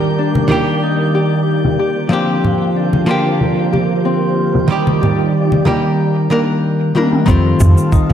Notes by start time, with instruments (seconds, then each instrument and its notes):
Already playing: hollow-body jazz guitar D#3 G3 A#3 D4 G4, string machine D#3 G3 A#3 G4 D5, harp C4 D#4 G4 A#4, synth texture G6
0.18 harp D4
0.35 high conga
0.48 hollow-body jazz guitar D#3 G3 A#3 D5, low conga
0.52 hollow-body jazz guitar G4
0.83 harp D#4
1.15 harp G4
1.65 low conga
1.79 string machine D3 A#3 C4 F4, harp G4
2.09 hollow-body jazz guitar F3 A#3 C4 D4, harp C4
2.13 hollow-body jazz guitar G4
2.44 low conga
2.76 harp D4
2.93 high conga
3.06 hollow-body jazz guitar F3 A#3 D4, harp F4
3.11 hollow-body jazz guitar G4
3.41 low conga
3.73 harp G4, high conga
4.05 harp C4
4.55 low conga
4.68 hollow-body jazz guitar D#3 G3 A#3 D5, string machine D#3 G3 G4 D5, harp D#4
4.72 hollow-body jazz guitar G4
4.87 high conga
5.01 harp G4, low conga
5.52 high conga
5.65 hollow-body jazz guitar D#3 G3 A#3 G4 D5, harp A#4, low conga
6.30 hollow-body jazz guitar D#3 G3 A#3 D4 A#4
6.95 hollow-body jazz guitar D#3 G3 A#3 D4 A#4, high tom
7.13 mid tom
7.26 upright bass F2, hollow-body jazz guitar D#3 G3 A3 C4, harp C4, string machine G4 F5 A5, kick, shaker
7.30 hollow-body jazz guitar F4
7.60 upright bass F2, low conga, shaker
7.77 shaker
7.92 harp D#4, kick, shaker
8.09 upright bass F2